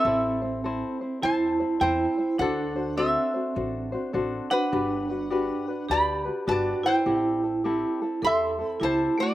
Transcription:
0.00 1.19 C4 medium
0.00 1.20 A4 medium
0.00 1.23 E5 medium
0.05 0.81 A1 medium
0.05 0.42 C4 medium
0.05 0.42 E4 medium
0.05 0.41 A4 medium
0.05 0.41 C5 medium
0.42 0.64 C4 soft
0.42 0.64 E4 soft
0.42 0.64 C5 medium
0.64 1.02 C4 medium
0.64 1.01 E4 medium
0.64 1.00 A4 medium
0.64 1.00 C5 loud
1.01 1.21 C4 soft
1.01 1.22 E4 soft
1.01 1.21 C5 soft
1.21 1.61 E2 medium
1.21 1.60 C4 medium
1.21 1.77 E4 medium
1.21 1.59 E4 medium
1.21 1.59 A4 medium
1.21 1.58 C5 medium
1.21 1.78 C5 medium
1.21 1.81 A5 loud
1.60 1.80 C4 soft
1.60 1.80 E4 medium
1.60 1.80 C5 medium
1.80 2.05 E2 medium
1.80 2.18 C4 medium
1.80 2.35 E4 medium
1.80 2.18 E4 medium
1.80 2.18 A4 medium
1.80 2.17 C5 medium
1.80 2.36 C5 medium
1.80 2.39 G5 medium
2.18 2.39 C4 soft
2.18 2.40 E4 soft
2.18 2.39 C5 medium
2.38 3.15 D2 medium
2.38 2.93 D4 medium
2.38 2.76 D4 medium
2.38 2.75 F#4 medium
2.38 2.76 A4 medium
2.38 2.95 A4 medium
2.38 2.75 C5 medium
2.38 2.97 F#5 medium
2.76 2.96 D4 soft
2.76 2.96 F#4 soft
2.76 2.97 C5 medium
2.96 4.47 C4 medium
2.96 3.35 D4 medium
2.96 3.34 F#4 medium
2.96 3.34 A4 medium
2.96 4.48 A4 medium
2.96 3.33 C5 medium
2.96 4.50 E5 medium
3.34 3.54 D4 soft
3.34 3.55 F#4 soft
3.34 3.56 C5 soft
3.55 3.94 A1 medium
3.55 3.93 D4 medium
3.55 3.92 F#4 medium
3.55 3.93 A4 medium
3.55 3.91 C5 medium
3.92 4.13 D4 soft
3.92 4.13 F#4 medium
3.92 4.13 C5 medium
4.13 4.38 A1 medium
4.13 4.51 D4 medium
4.13 4.51 F#4 medium
4.13 4.51 A4 medium
4.13 4.50 C5 medium
4.50 5.85 D4 medium
4.50 4.71 D4 soft
4.50 4.71 F#4 medium
4.50 5.86 B4 medium
4.50 4.72 C5 medium
4.50 5.85 F#5 medium
4.72 5.49 G1 medium
4.72 5.10 D4 medium
4.72 5.09 F#4 medium
4.72 5.09 G4 medium
4.72 5.08 B4 medium
5.09 5.30 D4 soft
5.09 5.30 F#4 soft
5.09 5.31 B4 medium
5.30 5.68 D4 medium
5.30 5.67 F#4 medium
5.30 5.68 G4 medium
5.30 5.67 B4 loud
5.68 5.88 D4 soft
5.68 5.89 F#4 soft
5.68 5.89 B4 soft
5.88 6.27 D2 medium
5.88 6.26 D4 medium
5.88 6.25 F#4 medium
5.88 6.26 G4 medium
5.88 6.43 G4 medium
5.88 6.24 B4 medium
5.88 6.48 B5 loud
5.93 6.45 D5 medium
6.25 6.47 D4 soft
6.25 6.46 F#4 soft
6.25 6.47 B4 medium
6.47 6.72 G1 medium
6.47 6.85 D4 medium
6.47 6.82 F#4 medium
6.47 6.84 F#4 medium
6.47 6.84 G4 medium
6.47 6.83 B4 medium
6.47 6.85 A5 medium
6.51 6.84 D5 medium
6.83 7.06 D4 soft
6.83 8.18 E4 medium
6.83 7.06 F#4 medium
6.83 7.06 B4 medium
6.83 8.20 C5 medium
6.83 8.24 G5 loud
7.06 7.82 A1 medium
7.06 7.43 C4 medium
7.06 7.43 E4 medium
7.06 7.43 G4 medium
7.06 7.42 A4 medium
7.43 7.64 C4 soft
7.43 7.64 E4 soft
7.43 7.64 A4 medium
7.64 8.02 C4 medium
7.64 8.01 E4 medium
7.64 8.01 G4 medium
7.64 8.00 A4 medium
8.02 8.22 C4 soft
8.02 8.23 E4 soft
8.02 8.23 A4 medium
8.22 8.60 E2 medium
8.22 8.59 C4 medium
8.22 8.59 E4 medium
8.22 8.60 G4 medium
8.22 8.77 A4 medium
8.22 8.57 A4 medium
8.22 8.67 C6 loud
8.27 8.79 E5 medium
8.59 8.80 C4 soft
8.59 8.80 E4 soft
8.59 8.81 A4 soft
8.67 8.83 B5 loud
8.80 9.05 C#2 medium
8.80 9.18 C4 medium
8.80 9.15 E4 medium
8.80 9.18 E4 medium
8.80 9.18 G4 medium
8.80 9.17 A4 medium
8.80 9.20 A5 loud
8.84 9.17 C5 medium
9.18 9.34 A3 medium
9.18 9.34 C4 soft
9.18 9.34 E4 soft
9.18 9.34 A4 medium
9.18 9.34 D5 loud
9.22 9.34 F#4 medium

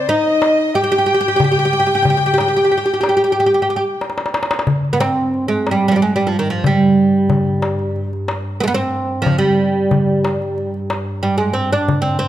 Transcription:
0.00 0.11 C4 medium
0.00 0.11 D5 medium
0.09 0.75 D#4 medium
0.09 0.77 D#5 medium
0.09 0.75 D#5 medium
0.09 darbuka ka soft
0.26 darbuka ka soft
0.42 darbuka tek medium
0.75 0.82 G4 medium
0.75 4.02 G5 medium
0.75 4.03 G5 loud
0.84 0.90 G4 medium
0.92 0.97 G4 medium
0.98 1.05 G4 medium
1.06 1.12 G4 medium
1.06 darbuka ka soft
1.14 1.19 G4 medium
1.21 1.27 G4 medium
1.28 1.35 G4 medium
1.36 1.43 G4 medium
1.36 darbuka dum medium
1.44 1.50 G4 medium
1.52 1.58 G4 medium
1.59 1.64 G4 medium
1.65 1.72 G4 medium
1.73 1.78 G4 medium
1.73 darbuka ka soft
1.80 1.85 G4 medium
1.86 1.94 G4 medium
1.95 2.01 G4 medium
2.02 2.09 G4 medium
2.02 darbuka dum medium
2.10 2.16 G4 medium
2.17 2.24 G4 medium
2.22 darbuka ka soft
2.26 2.33 G4 medium
2.34 2.39 G4 medium
2.38 2.47 G4 medium
2.38 darbuka tek medium
2.48 2.55 G4 medium
2.56 2.63 G4 medium
2.64 2.70 G4 medium
2.71 2.76 G4 medium
2.71 darbuka ka soft
2.78 2.84 G4 medium
2.86 2.92 G4 medium
2.94 3.00 G4 medium
3.01 3.08 G4 medium
3.01 darbuka tek medium
3.09 3.15 G4 medium
3.17 3.23 G4 medium
3.24 3.31 G4 medium
3.32 3.38 G4 medium
3.40 3.45 G4 medium
3.46 3.53 G4 medium
3.53 3.61 G4 medium
3.53 darbuka ka soft
3.62 3.68 G4 medium
3.69 3.75 G4 medium
3.69 darbuka ka soft
3.76 3.83 G4 medium
4.01 darbuka tek medium
4.10 darbuka ka medium
4.18 darbuka tek medium
4.26 darbuka ka medium
4.34 darbuka tek medium
4.43 darbuka ka medium
4.51 darbuka tek medium
4.59 darbuka ka medium
4.67 9.92 G2 medium
4.67 darbuka dum medium
4.85 darbuka ka soft
4.93 5.00 B3 medium
5.00 5.48 C4 medium
5.00 darbuka tek medium
5.18 darbuka ka soft
5.34 darbuka ka soft
5.48 5.71 G#3 medium
5.48 darbuka ka soft
5.67 darbuka tek medium
5.71 5.87 G3 medium
5.88 5.95 F3 medium
5.88 5.92 G3 medium
5.96 6.02 G3 medium
6.02 6.15 G#3 medium
6.16 6.27 G3 medium
6.27 6.37 F3 medium
6.39 6.50 D#3 medium
6.50 6.65 F3 medium
6.64 8.09 G3 medium
6.64 darbuka dum medium
7.30 darbuka dum medium
7.47 darbuka ka soft
7.62 darbuka tek medium
7.79 darbuka ka soft
7.96 darbuka ka soft
8.13 darbuka ka soft
8.28 darbuka tek medium
8.60 8.67 G#3 medium
8.60 8.63 B3 medium
8.68 8.74 B3 loud
8.74 9.27 C4 medium
9.22 9.38 F3 medium
9.26 darbuka dum medium
9.38 10.78 G3 medium
9.91 12.28 G2 medium
9.91 darbuka dum medium
10.09 darbuka ka soft
10.25 darbuka tek medium
10.42 darbuka ka soft
10.58 darbuka ka soft
10.74 darbuka ka soft
10.90 darbuka tek medium
11.23 11.37 G3 medium
11.38 11.53 G#3 medium
11.53 11.71 C4 medium
11.73 12.01 D4 medium
11.88 darbuka dum medium
12.02 12.18 C4 medium
12.19 12.28 C4 medium

